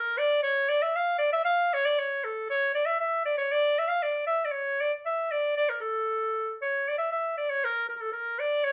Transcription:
Already playing: A#4
0.18 D5
0.43 C#5
0.69 D5
0.82 E5
0.96 F5
1.18 D5
1.32 E5
1.44 F5
1.73 C#5
1.85 D5
1.99 C#5
2.24 A4
2.50 C#5
2.74 D5
2.86 E5
3.00 E5
3.25 D5
3.38 C#5
3.52 D5
3.78 E5
3.88 F5
4.02 D5
4.27 E5
4.45 D5
4.51 C#5
4.81 D5
5.06 E5
5.31 D5
5.57 D5
5.69 A#4
5.81 A4
6.62 C#5
6.88 D5
6.98 E5
7.12 E5
7.37 D5
7.50 C#5
7.64 A#4
7.89 A#4
7.96 A#4
8.01 A4
8.12 A#4
8.40 D5
8.64 C#5

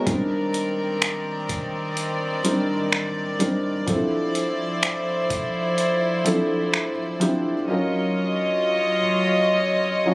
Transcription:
Already playing: A#4
0.06 D#3 G3 C4 D4 D#4 A#4 D5, kick, closed hi-hat
0.54 closed hi-hat
1.02 finger snap, closed hi-hat
1.49 kick, closed hi-hat
1.97 closed hi-hat
2.44 G3 C4 D4 D#4 A#4, closed hi-hat
2.92 finger snap
3.39 G3 C4 D4 D#4 A#4, closed hi-hat
3.87 F3 C4 D4 E4 A4 C5, kick, closed hi-hat
4.35 closed hi-hat
4.83 finger snap, closed hi-hat
5.30 kick, closed hi-hat
5.78 closed hi-hat
6.25 F3 C4 D4 E4 A4, closed hi-hat
6.74 finger snap
7.20 F3 C4 D4 E4 G4, closed hi-hat
7.67 F#3 C#4 D#4 F4 A#4 C#5 D#5
10.06 F#3 C#4 D#4 F4 C#5

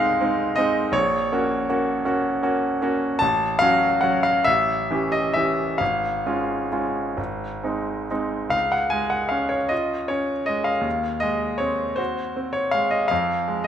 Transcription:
Already playing: C2 G#3 C4 D#4 D#5 F5 F#5 G#5
0.21 G#3 C4 D#4
0.56 G#3 C4 D#4 D#5
0.92 A#1 C#5
1.32 A#3 C#4 F#4
1.69 A#3 C#4 F#4
2.05 A#3 C#4 F#4
2.43 A#3 C#4 F#4
2.82 A#3 C#4 F#4
3.19 A1 A5
3.59 F#3 C#4 F#4 F5
4.01 F#3 C#4 F#4 F#5
4.23 F5
4.44 A1 E5
4.90 E3 C#4 G4
5.12 D#5
5.34 E3 C#4 G4 E5
5.78 G#1 F5
6.26 G#3 C#4 F4
6.72 G#3 C#4 F4
7.17 G#1
7.64 G#3 C4 D#4
8.11 G#3 C4 D#4
8.49 C#2 F5
8.72 F#5
8.90 G#3 G#5
9.10 F#5
9.29 C#4 F5
9.49 C#5
9.69 F4 D#5
10.08 C#4 C#5
10.46 G#3 D#5
10.64 F5
10.81 D#2
11.20 G#3 D#5
11.58 C4 C#5
11.96 F#4 C5
12.37 C4
12.53 C#5
12.71 G#3 F5
12.91 D#5
13.08 F2 F5
13.48 G#3

